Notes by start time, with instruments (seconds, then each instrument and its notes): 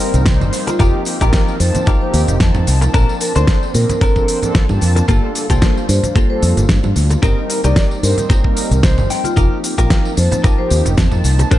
Already playing: analog polysynth G3 A#3 C4 D#4 A#4, clean electric guitar C4 D#4 G4 C5
0.00 shaker
0.14 fingered electric bass C2, closed hi-hat, tambourine, low conga, shaker
0.26 analog polysynth G3 A#3 C4 D#4 C5, kick, snare, closed hi-hat, tambourine, shaker
0.41 fingered electric bass G1, tambourine, low conga
0.53 open hi-hat, tambourine, shaker
0.67 vibraphone F4, muted clean electric guitar stroke, closed hi-hat, tambourine, high conga, shaker
0.79 fingered electric bass F1, analog polysynth C4 G4, clean electric guitar D#4 F4 G4 A#4, kick, closed hi-hat, tambourine, high bongo, shaker
1.05 open hi-hat, tambourine, shaker
1.21 fingered electric bass A#1, analog polysynth F3 A#3 C4 D#4 A#4, clean electric guitar D#4 F4 G4 A#4, kick, closed hi-hat, tambourine, high bongo, shaker
1.33 kick, snare, closed hi-hat, tambourine, shaker
1.48 tambourine
1.60 fingered electric bass F2, analog polysynth F3 A#3 C4 D#4 A5, vibraphone C5, open hi-hat, tambourine, shaker
1.75 closed hi-hat, tambourine, high conga, low conga, shaker
1.86 clean electric guitar D#4 F4 G4 A#4, kick, closed hi-hat, tambourine, shaker
2.01 analog polysynth F3 A#3 C4 D#4 G4, vibraphone C5
2.13 fingered electric bass D#2, open hi-hat, tambourine, high bongo, shaker
2.28 fingered electric bass F1, closed hi-hat, tambourine, low conga, shaker
2.40 fingered electric bass F2, analog polysynth F3 A#3 C4 D#4 A5, kick, snare, closed hi-hat, tambourine, shaker
2.55 fingered electric bass F2, tambourine, low conga
2.67 fingered electric bass C2, open hi-hat, tambourine, shaker
2.82 muted clean electric guitar stroke, closed hi-hat, tambourine, high conga, shaker
2.94 fingered electric bass A#1, analog polysynth F3 A#3 D4 A5, clean electric guitar C4 D4 A4 A#4, kick, closed hi-hat, tambourine, shaker
3.09 tambourine
3.20 vibraphone A#4, open hi-hat, tambourine, shaker
3.35 fingered electric bass D2, analog polysynth F3 A#3 C4 D4 C5, clean electric guitar C4 D4 A4 C5, closed hi-hat, tambourine, high bongo, shaker
3.47 kick, snare, closed hi-hat, tambourine, shaker
3.63 tambourine
3.74 fingered electric bass A#2, analog polysynth F3 A#3 C4 D4, vibraphone A#4, open hi-hat, tambourine, high conga, shaker
3.89 closed hi-hat, tambourine, high conga, low conga, shaker
4.01 clean electric guitar C4 D4 A4 A#4, kick, closed hi-hat, tambourine, high bongo, shaker
4.15 analog polysynth F3 A#3 C4 D4 A4, kick, tambourine, high conga
4.28 analog polysynth F3 A#3 C4 D4 C5, open hi-hat, tambourine, shaker
4.42 analog polysynth F3 A#3 C4 D4 A4, closed hi-hat, tambourine, low conga, shaker
4.55 kick, snare, closed hi-hat, tambourine, shaker
4.69 fingered electric bass G2, analog polysynth F3 A#3 C4 D4 A5, tambourine, low conga
4.81 fingered electric bass F2, open hi-hat, tambourine, shaker
4.95 muted clean electric guitar stroke, closed hi-hat, tambourine, high conga, shaker
5.08 fingered electric bass G1, clean electric guitar A#3 F4 G4 A4, analog polysynth D4 F4 A4, kick, closed hi-hat, tambourine, high bongo, shaker
5.35 open hi-hat, tambourine, shaker
5.49 fingered electric bass C2, analog polysynth G3 A#3 D4 F4 C5, clean electric guitar A#3 F4 G4 A4, kick, closed hi-hat, tambourine, high bongo, shaker
5.62 kick, snare, closed hi-hat, tambourine, shaker
5.78 tambourine
5.88 fingered electric bass G2, analog polysynth G3 A#3 D4 F4, vibraphone C5, open hi-hat, tambourine, shaker
6.03 closed hi-hat, tambourine, high conga, low conga, shaker
6.16 clean electric guitar A#3 F4 G4 A4, kick, closed hi-hat, tambourine, shaker
6.29 analog polysynth G3 A#3 D4 F4 A4, vibraphone C5
6.42 fingered electric bass F2, open hi-hat, tambourine, high bongo, shaker
6.57 fingered electric bass G1, closed hi-hat, tambourine, low conga, shaker
6.69 fingered electric bass G2, analog polysynth G3 A#3, kick, snare, closed hi-hat, tambourine, shaker
6.83 fingered electric bass G2, tambourine, low conga
6.96 fingered electric bass D2, open hi-hat, tambourine, shaker
7.10 muted clean electric guitar stroke, closed hi-hat, tambourine, high conga, shaker
7.22 fingered electric bass G1, analog polysynth G3 A#3 C4 D#4 A#4, clean electric guitar C4 D#4 G4 A#4, kick, closed hi-hat, tambourine, shaker
7.50 open hi-hat, tambourine, shaker
7.64 fingered electric bass C2, analog polysynth G3 A#3 C4 D#4 D5, clean electric guitar C4 D#4 G4 A#4, vibraphone D5, closed hi-hat, tambourine, high bongo, shaker
7.76 kick, snare, closed hi-hat, tambourine, shaker
7.91 tambourine
8.03 fingered electric bass G2, analog polysynth G3 A#3 C4 D#4 C5, vibraphone A#4, open hi-hat, tambourine, shaker
8.18 closed hi-hat, tambourine, high conga, low conga, shaker
8.29 clean electric guitar C4 D#4 G4 A#4, kick, closed hi-hat, tambourine, high bongo, shaker
8.44 analog polysynth G3 A#3 C4 D#4 A#4, kick, high conga
8.57 open hi-hat, tambourine, shaker
8.71 fingered electric bass C2, closed hi-hat, tambourine, low conga, shaker
8.83 analog polysynth A#3, clean electric guitar C5, kick, snare, closed hi-hat, tambourine, shaker
8.98 fingered electric bass G1, tambourine, low conga
9.10 clean electric guitar G5, open hi-hat, tambourine, shaker
9.24 vibraphone F4, muted clean electric guitar stroke, closed hi-hat, tambourine, high conga, shaker
9.36 fingered electric bass F1, analog polysynth F3 A#3 C4 G4, clean electric guitar D#4 F4 G4 A#4, kick, closed hi-hat, tambourine, high bongo, shaker
9.64 open hi-hat, tambourine, shaker
9.78 fingered electric bass A#1, analog polysynth F3 A#3 C4 D#4 A#4, clean electric guitar D#4 F4 G4 A#4, kick, closed hi-hat, tambourine, high bongo, shaker
9.90 kick, snare, closed hi-hat, tambourine, shaker
10.05 tambourine
10.17 fingered electric bass F2, analog polysynth F3 A#3 C4 D#4 A5, vibraphone C5, open hi-hat, tambourine, shaker
10.31 closed hi-hat, tambourine, high conga, low conga, shaker
10.44 clean electric guitar D#4 F4 G4 A#4, kick, closed hi-hat, tambourine, shaker
10.58 analog polysynth F3 A#3 C4 D#4 G4, vibraphone C5
10.70 fingered electric bass D#2, open hi-hat, tambourine, high bongo, shaker
10.85 fingered electric bass F1, closed hi-hat, tambourine, low conga, shaker
10.97 fingered electric bass F2, analog polysynth F3 A#3 C4 D#4 A5, kick, snare, closed hi-hat, tambourine, shaker
11.12 fingered electric bass F2, tambourine, low conga
11.24 fingered electric bass C2, open hi-hat, tambourine, shaker
11.39 muted clean electric guitar stroke, closed hi-hat, tambourine, high conga, shaker
11.51 fingered electric bass A#1, analog polysynth F3 A5, clean electric guitar D4 A4 A#4 C5, kick, closed hi-hat, tambourine, shaker